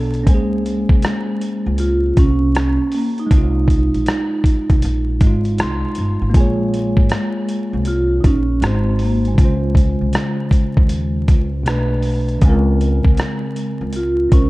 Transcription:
Already playing: upright bass B1, tine electric piano B2 B3 D4 A4
0.14 closed hi-hat
0.23 upright bass C#2, tine electric piano A#3 C#4, kick, closed hi-hat
0.29 vibraphone G#3, tine electric piano C5
0.34 tine electric piano G#4
0.66 closed hi-hat
0.89 upright bass C2, kick
1.02 cross-stick, closed hi-hat
1.41 closed hi-hat
1.66 upright bass C#2
1.78 vibraphone F4, closed hi-hat
2.17 upright bass C2, vibraphone C#4, kick, closed hi-hat
2.55 vibraphone C#4, cross-stick, closed hi-hat
2.92 vibraphone A#3, open hi-hat
3.18 vibraphone D#4, closed hi-hat
3.26 tine electric piano G#3
3.31 upright bass C2, tine electric piano D#4, kick, closed hi-hat
3.37 tine electric piano F4
3.68 kick, closed hi-hat
3.94 upright bass A#1, closed hi-hat
4.06 cross-stick, closed hi-hat
4.44 kick, closed hi-hat
4.70 upright bass C2, kick, closed hi-hat
4.82 upright bass A#1, closed hi-hat
5.21 upright bass G#1, tine electric piano G#3 D#4, kick, closed hi-hat
5.27 tine electric piano F4
5.45 closed hi-hat
5.58 upright bass C2, tine electric piano C6, cross-stick, closed hi-hat
5.95 upright bass G1, closed hi-hat
6.22 upright bass G#1
6.30 tine electric piano A#3 F4
6.34 upright bass A#1, vibraphone G#3, tine electric piano G#4, kick, closed hi-hat
6.40 tine electric piano C#5
6.74 closed hi-hat
6.97 upright bass G#1, kick
7.09 cross-stick, closed hi-hat
7.49 closed hi-hat
7.73 upright bass C2
7.85 vibraphone F4, closed hi-hat
8.20 vibraphone D#4, kick, closed hi-hat
8.25 upright bass A#1, vibraphone C#4
8.61 upright bass G#1, tine electric piano G#3 D#4 F#4, vibraphone C4, cross-stick, closed hi-hat
8.66 tine electric piano C5
8.99 vibraphone A#3, open hi-hat
9.25 vibraphone G#3, closed hi-hat
9.34 tine electric piano C#3 C#4, kick
9.38 upright bass C#2, tine electric piano F4, closed hi-hat
9.45 tine electric piano C5
9.75 kick, closed hi-hat
10.01 upright bass C2
10.13 cross-stick, closed hi-hat
10.51 kick, closed hi-hat
10.77 upright bass D#2, kick
10.89 closed hi-hat
11.28 upright bass C#2, kick, closed hi-hat
11.63 upright bass B1, tine electric piano B2 A3 D4, closed hi-hat
11.68 tine electric piano B4, cross-stick
12.03 open hi-hat
12.29 closed hi-hat
12.38 tine electric piano C#3 G#3, kick, closed hi-hat
12.42 upright bass C#2, vibraphone G#3, tine electric piano C4
12.49 tine electric piano A#4
12.81 closed hi-hat
13.04 upright bass C2, kick
13.17 cross-stick, closed hi-hat
13.56 closed hi-hat
13.81 upright bass C#2
13.93 vibraphone F4, closed hi-hat
14.29 upright bass C2, tine electric piano G#3 C#4 C5, vibraphone C#4, kick, closed hi-hat
14.35 tine electric piano A#4

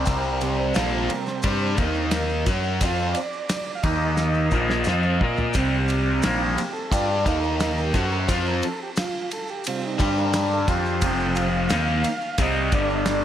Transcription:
0.06 picked electric bass C2, overdriven electric guitar C3 G3 C4, transistor combo organ A#4, kick, ride, maracas
0.24 maracas
0.41 transistor combo organ C3 G3 C4 C5, ride, maracas
0.59 transistor combo organ A#4
0.74 picked electric bass A#1, overdriven electric guitar A#2 F3 A#3, transistor combo organ A4, snare, ride, maracas
1.08 transistor combo organ A4 A#4, muted overdriven electric guitar stroke, muted picked electric bass stroke, ride, maracas
1.26 transistor combo organ C5, snare, maracas
1.42 picked electric bass G2, overdriven electric guitar G3 D4 G4, kick, ride, maracas
1.77 picked electric bass D#2, overdriven electric guitar D#3 A#3 D#4, transistor combo organ D#3 A#3 D#4, kick, ride, maracas
1.94 maracas
2.11 snare, ride, maracas
2.29 maracas
2.46 picked electric bass F#2, overdriven electric guitar F#3 C#4 F#4, kick, ride, maracas
2.64 maracas
2.81 picked electric bass F2, overdriven electric guitar F3 C4 F4, transistor combo organ C5, kick, ride, maracas
2.99 maracas
3.13 transistor combo organ D5, ride, maracas
3.33 maracas
3.49 snare, ride, maracas
3.75 transistor combo organ F5
3.83 picked electric bass D#2, transistor combo organ D#3 A#3 D#4 D#5, overdriven electric guitar D#3 A#3 D#4, kick, ride, maracas
4.17 snare, maracas
4.34 maracas
4.51 picked electric bass A#1, overdriven electric guitar A#2 F3 A#3, kick, maracas
4.70 snare
4.84 picked electric bass F2, overdriven electric guitar F3, snare, maracas
4.88 overdriven electric guitar C4 F4
5.03 maracas
5.21 picked electric bass A#2, overdriven electric guitar A#3 F4 A#4, kick
5.37 floor tom, maracas
5.54 picked electric bass C2, overdriven electric guitar C3 G3 C4, transistor combo organ C3 G3 C4, kick, ride, maracas
5.88 ride, maracas
6.22 picked electric bass A#1, overdriven electric guitar A#2 F3 A#3, transistor combo organ D#4, snare, ride, maracas
6.39 transistor combo organ F4
6.56 transistor combo organ G4, muted overdriven electric guitar stroke, muted picked electric bass stroke, ride, maracas
6.73 transistor combo organ A4, maracas
6.91 picked electric bass G2, overdriven electric guitar G3 D4 G4, transistor combo organ F4, kick, ride, maracas
7.09 transistor combo organ G4
7.26 picked electric bass D#2, overdriven electric guitar D#3 A#3 D#4, transistor combo organ D#3 A#3 D#4 A4, kick, ride, maracas
7.43 transistor combo organ A#4, maracas
7.60 snare, ride, maracas
7.77 transistor combo organ G4, maracas
7.93 picked electric bass F#2, overdriven electric guitar F#3 C#4 F#4, transistor combo organ A4 C5, kick, ride, maracas
8.12 transistor combo organ A#4, maracas
8.29 picked electric bass F2, overdriven electric guitar F3 C4 F4, transistor combo organ C5, kick, ride, maracas
8.45 transistor combo organ A#4, maracas
8.62 transistor combo organ A4, ride, maracas
8.83 transistor combo organ G4
8.96 transistor combo organ F4, snare, ride, maracas
9.31 transistor combo organ A4, ride, maracas
9.48 transistor combo organ G4, maracas
9.64 transistor combo organ C3 C4, ride, maracas
9.69 transistor combo organ G3 F4
9.85 transistor combo organ D#4
9.99 picked electric bass G2, transistor combo organ D3 G3 D4 C5, overdriven electric guitar G3 D4 G4, kick, ride, maracas
10.17 transistor combo organ A#4, maracas
10.33 snare, ride, maracas
10.51 transistor combo organ A4, maracas
10.68 picked electric bass F2, overdriven electric guitar F3 C4 F4, transistor combo organ G4, kick, ride, maracas
10.86 maracas
11.01 picked electric bass F1, overdriven electric guitar F2 C3 F3, transistor combo organ C3 F3 C4 G5, kick, ride, maracas
11.20 maracas
11.35 transistor combo organ F5, ride, maracas
11.69 picked electric bass D#2, overdriven electric guitar D#3 A#3 D#4, snare, ride, maracas
12.04 muted overdriven electric guitar stroke, muted picked electric bass stroke, ride, maracas
12.21 maracas
12.38 picked electric bass C2, overdriven electric guitar C3 G3 C4, transistor combo organ D#5, kick, ride, maracas
12.71 picked electric bass G1, overdriven electric guitar G2 D3 G3, transistor combo organ D3 G3 D4, kick, ride, maracas
12.76 transistor combo organ D5
12.90 maracas
12.94 transistor combo organ D#5
13.06 snare, ride, maracas
13.11 transistor combo organ D5

